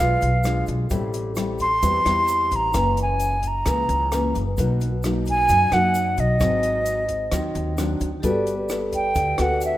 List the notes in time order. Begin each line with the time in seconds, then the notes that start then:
Already playing: F5
0.00 B1 B2 G#3 D4 F4
0.21 B1, closed hi-hat, shaker
0.44 G#3 D4 F4, cross-stick, closed hi-hat, shaker
0.66 B1, kick, closed hi-hat, shaker
0.90 A1 A2 G3 C4 E4, kick, closed hi-hat, shaker
1.13 closed hi-hat, shaker
1.36 G3 C4 E4, cross-stick, closed hi-hat, shaker
1.59 C6, kick, closed hi-hat, shaker
1.82 E2 E3 G3 C4 E4, kick, closed hi-hat, shaker
2.04 E2 G3 C4 E4, cross-stick, closed hi-hat, shaker
2.28 closed hi-hat, shaker
2.51 A1, kick, closed hi-hat, shaker
2.56 A#5
2.73 F#1 F#2 E3 A#3 C#4, kick, cross-stick, closed hi-hat, shaker
2.97 closed hi-hat, shaker
3.02 G#5
3.20 closed hi-hat, shaker
3.43 kick, closed hi-hat, shaker
3.47 A#5
3.66 C#2 C#3 E3 A#3 C#4, kick, cross-stick, closed hi-hat, shaker
3.89 C#2, closed hi-hat, shaker
4.12 E3 A#3 C#4, cross-stick, closed hi-hat, shaker
4.35 F#1, kick, closed hi-hat, shaker
4.57 B1 B2 F#3 A#3 D#4, kick, closed hi-hat, shaker
4.81 closed hi-hat, shaker
5.03 F#3 A#3 D#4, cross-stick, closed hi-hat, shaker
5.26 kick, closed hi-hat, shaker
5.30 G#5
5.49 F#2, kick, closed hi-hat, shaker
5.71 F#2 F#3 A#3 D#4 F#5, cross-stick, closed hi-hat, shaker
5.94 closed hi-hat, shaker
6.17 B1 D#5, kick, closed hi-hat, shaker
6.40 G#1 G#2 F#3 C4, kick, cross-stick, closed hi-hat, shaker
6.63 closed hi-hat, shaker
6.86 closed hi-hat, shaker
7.09 kick, closed hi-hat, shaker
7.32 D#2 D#3 F#3 C4, kick, cross-stick, closed hi-hat, shaker
7.55 D#2, closed hi-hat, shaker
7.77 F#3 C4 D4, cross-stick, closed hi-hat, shaker
8.00 D2, kick, closed hi-hat, shaker
8.20 G1 G3 B3 F#4 G4 A4, kick, closed hi-hat, shaker
8.24 B4 D5
8.47 closed hi-hat, shaker
8.69 B3 A4, cross-stick, closed hi-hat, shaker
8.93 G5, kick, closed hi-hat, shaker
9.15 D2 D3, kick, closed hi-hat, shaker
9.38 D2 B3 F#4 A4 F#5, cross-stick, closed hi-hat, shaker
9.61 closed hi-hat, shaker
9.65 E5